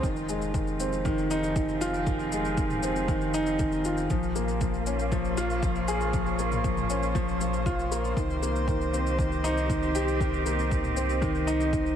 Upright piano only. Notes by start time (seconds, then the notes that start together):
0.03 D#3
0.29 G#3
0.54 D#3
0.80 C4
1.05 D#3
1.31 D#4
1.56 D#3
1.81 F4
2.07 D#3
2.32 G#3
2.57 D#3
2.83 C4
3.08 D#3
3.34 D#4
3.59 D#3
3.85 F4
4.10 F3
4.35 A#3
4.61 F3
4.87 C#4
5.12 F3
5.37 F4
5.63 F3
5.88 G#4
6.14 F3
6.39 A#3
6.64 F3
6.90 C#4
7.15 F3
7.41 F3
7.66 F4
7.91 A#3
8.17 D#3
8.42 A#3
8.67 D#3
8.93 C4
9.19 D#3
9.44 D#4
9.69 D#3
9.95 G4
10.20 D#3
10.46 A#3
10.71 D#3
10.96 C4
11.22 D#3
11.47 D#4
11.73 D#3